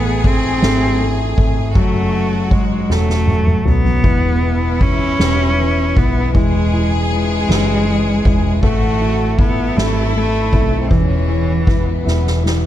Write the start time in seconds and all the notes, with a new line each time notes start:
Already playing: A1 A2 E3 A3 B3 E4 G#4
0.23 E3 A3 C4 E4, kick, ride
0.61 G#1 E3 A3 C4 E4, snare, ride
1.00 A3, ride
1.36 G#1 A3 C4 E4, kick, ride
1.75 F#1 F#2 C#3 F#3 A3 C#4 F#4, kick, ride
2.14 F#3, ride
2.51 F#3 G#3 C#4 F#4, kick, ride
2.90 E1 F#2 C#3 F#3 A3 C#4 F#4, snare
3.10 snare
3.27 F#3, high tom
3.47 mid tom
3.65 B1 F#3 A3 B3 C#4 F#4, mid tom
3.85 floor tom
4.02 E1 E2 B2 E3 G#3 B3 E4, kick
4.42 E3, ride
4.79 E3 G#3 B3 C#4 E4, kick, ride
5.19 E1 E2 B2 E3 G#3 B3 E4, snare, ride
5.58 E3, ride
5.95 B1 E3 G#3 B3 E4, kick, ride
6.33 E1 E3 G#3 C#4 E4 G#4, kick, ride
6.73 E3, ride
7.09 E3 G#3 C#4 E4, ride
7.48 F#1 E3 G#3 C#4 E4, snare, ride
7.88 E3, ride
8.24 E1 E3 G#3 C#4 E4, kick, ride
8.61 A1 A2 E3 A3 C4 E4 F#4, kick, ride
9.01 E4, ride
9.38 E3 A3 B3 E4, kick, ride
9.76 G#1 E3 A3 C4 E4, snare, ride
10.15 A3, ride
10.52 B1 C4 E4, kick, ride
10.56 A3
10.83 C4
10.90 E1 E2 B2 E3 G#3 B3 C#4 E4, kick, ride
11.29 E3, ride
11.66 E3 G#3 B3 E4, kick, snare, ride
12.05 E1 E2 B2 E3 G#3 B3 E4, snare
12.27 snare
12.44 E3, snare